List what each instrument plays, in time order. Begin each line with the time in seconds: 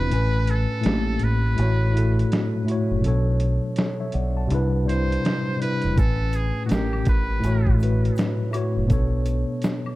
Already playing: tine electric piano C3 C4 D4 E4 F4 F#4 B4, muted trumpet B4
0.00 fingered electric bass E1
0.08 tine electric piano A2 A3 C#4, closed hi-hat
0.12 fingered electric bass A1, tine electric piano B4 G#5
0.47 muted trumpet A4, closed hi-hat
0.81 tine electric piano A2 A3 C#4, closed hi-hat
0.86 fingered electric bass A1, tine electric piano A#3 G4, snare
1.20 fingered electric bass A1, closed hi-hat
1.24 muted trumpet B4
1.54 tine electric piano A2 A3 E4, closed hi-hat
1.59 fingered electric bass A1, tine electric piano F#4 C#5
1.91 tine electric piano A2 A3 E4
1.96 tine electric piano F#4 A4, closed hi-hat
2.19 closed hi-hat
2.32 snare, closed hi-hat
2.64 tine electric piano A2 A3 E4
2.68 tine electric piano F#4 C#5, closed hi-hat
2.91 fingered electric bass F#1
3.01 tine electric piano B2 F#3 D4, closed hi-hat
3.05 fingered electric bass B1, tine electric piano A4 C#5
3.40 closed hi-hat
3.76 tine electric piano A4 C#5, snare, closed hi-hat
4.00 tine electric piano C#5 E5
4.12 fingered electric bass B1, tine electric piano D5 F#5, closed hi-hat
4.37 tine electric piano F#5 A5
4.47 tine electric piano C3 G3 D4, closed hi-hat
4.51 fingered electric bass C2, tine electric piano E4 B4
4.84 tine electric piano C3 G3 D4
4.89 tine electric piano E4 C5, muted trumpet C5, closed hi-hat
5.12 closed hi-hat
5.25 snare, closed hi-hat
5.56 tine electric piano C3 G3 D4
5.62 tine electric piano E4 B4, muted trumpet B4, closed hi-hat
5.82 fingered electric bass E1, closed hi-hat
5.93 tine electric piano A2 A3 C#4
5.97 fingered electric bass A1, muted trumpet A4, tine electric piano B4 G#5, kick, closed hi-hat, shaker
6.32 muted trumpet G#4, closed hi-hat, shaker
6.66 tine electric piano A2 A3, muted trumpet F#4, closed hi-hat
6.70 fingered electric bass A1, tine electric piano C#4 G4 A#4, muted trumpet G4, snare, shaker
6.93 high woodblock
7.05 fingered electric bass A1, muted trumpet B4, kick, closed hi-hat, shaker
7.40 tine electric piano A2 A3 E4, closed hi-hat, shaker
7.44 fingered electric bass A1, tine electric piano F#4 C#5
7.67 kick
7.76 tine electric piano A2 A3 E4, shaker
7.82 tine electric piano F#4 B4, closed hi-hat
8.05 closed hi-hat
8.16 snare, closed hi-hat, shaker
8.49 tine electric piano A2 A3 E4, high woodblock, shaker
8.54 tine electric piano F#4 C#5, closed hi-hat
8.77 fingered electric bass F#1
8.86 tine electric piano B2 B3 D4, closed hi-hat
8.90 fingered electric bass B1, tine electric piano A4 C#5, kick, shaker
9.26 closed hi-hat, shaker
9.62 snare, closed hi-hat, shaker
9.86 high woodblock